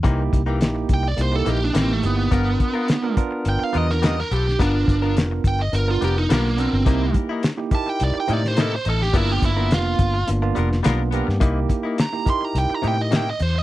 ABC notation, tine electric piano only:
X:1
M:4/4
L:1/16
Q:1/4=106
K:Cmix
V:1 name="Tine electric piano"
[B,^DEG]3 [B,DEG]4 z [B,DEG] [B,DEG]3 [B,DEG]2 [B,DEG]2 | [=B,DF^A]4 z [B,DFA] [B,DFA]6- [B,DFA] z3 | [=B,DF^A]3 [B,DFA]4 z [B,DFA] [B,DFA]3 [B,DFA]2 [B,DFA]2 | [B,^DEG]4 z [B,DEG] [DEGB]6- [DEGB] z3 |
[^A,=B,DF]3 [A,B,DF]4 z [A,B,DF] [A,B,DF]3 [A,B,DF]2 [A,B,DG]2 | [B,^DEG]4 z [B,DEG] [DEGB]6- [DEGB] z3 |]